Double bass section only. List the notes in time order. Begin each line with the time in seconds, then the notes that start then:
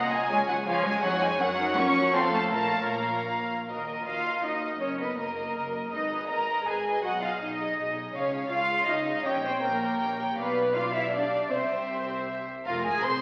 Already playing: C2
0.30 C#2
1.04 F2
1.40 F#2
1.77 F2
2.15 F2
2.53 A#1
3.69 D#2
4.06 D#2
4.44 D#2
4.81 F#1
5.19 F#1
5.56 F#1
5.93 G#1
6.30 G#1
6.67 G#1
7.04 B1
7.41 B1
7.78 B1
8.15 C#2
8.52 C#2
8.89 C#2
9.26 A#1
9.63 A#1
10.01 A#1
10.38 B1
11.52 C2
12.66 F1
12.85 G#1
13.04 C2